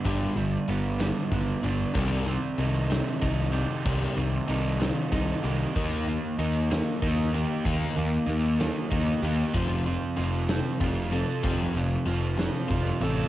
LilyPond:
<<
  \new Staff \with { instrumentName = "Overdriven electric guitar" } { \time 6/8 \key c \dorian \tempo 4. = 63 <g b d'>8 g8 b8 g8 b8 d'8 | c8 c'8 ees'8 c'8 ees'8 g'8 | c8 c'8 ees'8 c'8 ees'8 g'8 | ees8 bes8 ees'8 bes8 ees'8 g'8 |
ees8 bes8 ees'8 bes8 ees'8 g'8 | f8 c'8 f'8 c'8 f'8 a'8 | f8 c'8 f'8 c'8 f'8 a'8 | }
  \new Staff \with { instrumentName = "Overdriven electric guitar" } { \clef bass \time 6/8 \key c \dorian <g, d g>8 <g, d>8 <g, d>8 <g, d>8 <g, d>8 <g, d>8 | <c ees g>8 <c ees>8 <c ees>8 <c ees>8 <c ees>8 <c ees>8 | <c ees g>8 <c ees>8 <c ees>8 <c ees>8 <c ees>8 <c ees>8 | <ees bes ees'>8 <ees bes>8 <ees bes>8 <ees bes>8 <ees bes>8 <ees bes>8 |
<ees bes ees'>8 <ees bes>8 <ees bes>8 <ees bes>8 <ees bes>8 <ees bes>8 | <f, c f>8 <f, c>8 <f, c>8 <f, c>8 <f, c>8 <f, c>8 | <f, c f>8 <f, c>8 <f, c>8 <f, c>8 <f, c>8 <f, c>8 | }
  \new Staff \with { instrumentName = "Picked electric bass" } { \clef bass \time 6/8 \key c \dorian g,,8 g,,8 g,,4 g,,8 g,,8 | c,4 c,4 c,4 | c,8 c,8 c,4 c,8 c,8 | ees,4 ees,4 ees,4 |
ees,8 ees,8 ees,4 ees,8 ees,8 | f,,4 f,,4 f,,4 | f,,8 f,,8 f,,4 f,,8 a,,8 | }
  \new DrumStaff \with { instrumentName = "Drums" } \drummode { \time 6/8 <hh bd>8 hh8 hh8 <hh sn>8 <hh bd>8 hh8 | <hh bd>8 hh8 hh8 <hh sn>8 <hh bd>8 hh8 | <hh bd>8 hh8 hh8 <hh sn>8 <hh bd>8 hh8 | <hh bd>8 hh8 hh8 <hh sn>8 <hh bd>8 hh8 |
<hh bd>8 hh8 hh8 <hh sn>8 <hh bd>8 hh8 | <hh bd>8 hh8 hh8 <hh sn>8 <hh bd>8 hh8 | <hh bd>8 hh8 hh8 <hh sn>8 <hh bd>8 hh8 | }
>>